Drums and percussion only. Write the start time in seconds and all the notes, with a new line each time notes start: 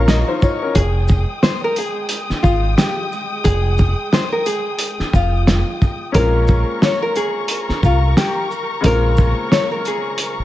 0.08 snare, closed hi-hat
0.42 kick, shaker
0.75 kick, closed hi-hat
1.08 kick, shaker
1.43 snare, closed hi-hat
1.76 closed hi-hat, shaker
2.09 closed hi-hat
2.30 snare
2.44 kick, shaker
2.78 snare, closed hi-hat
3.12 shaker
3.45 kick, closed hi-hat
3.78 kick, shaker
4.13 snare, closed hi-hat
4.46 closed hi-hat, shaker
4.79 closed hi-hat
5.00 snare
5.14 kick, shaker
5.47 snare, closed hi-hat
5.82 kick, shaker
6.14 kick, closed hi-hat
6.48 kick, shaker
6.82 snare, closed hi-hat
7.16 closed hi-hat, shaker
7.48 closed hi-hat
7.69 snare
7.83 kick, shaker
8.17 snare, closed hi-hat
8.51 shaker
8.84 kick, closed hi-hat
9.17 kick, shaker
9.52 snare, closed hi-hat
9.85 closed hi-hat, shaker
10.18 closed hi-hat